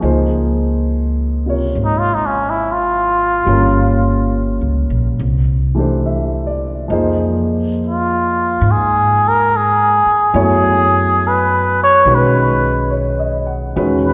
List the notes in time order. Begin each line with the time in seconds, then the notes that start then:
Already playing: G#5
0.00 C#2 F3 A#3 D#4 G#4
0.05 C5
1.46 C3 F4 A#4 C#5
1.75 G#1
1.85 D#4
1.99 F4
2.14 D#4
2.26 C#4
2.50 E4
2.72 F4
3.45 G1 G3 A#3 C#4 F4
3.50 A#4
4.61 C#2
4.90 A#1
5.19 C2
5.75 E3 A3 D4
5.79 G4 C5
6.06 E5
6.47 D5
6.88 F2 F3 A#3 D#4
6.92 G#4 C5
7.86 F4
8.61 G#2
8.71 G#4
9.28 A#4
9.57 G#4
10.06 muted upright bass stroke
10.34 F#2 F#3 A3 B3 E4 C#5
10.43 G#4
11.28 B4
11.84 C#5
12.05 B1 D#3 G#3 C#4 F#4 B4
12.15 B4
12.91 C#5
13.19 D#5
13.47 F#5
13.76 E2 D#3 G#3 C#4 F#4 B4
14.07 B4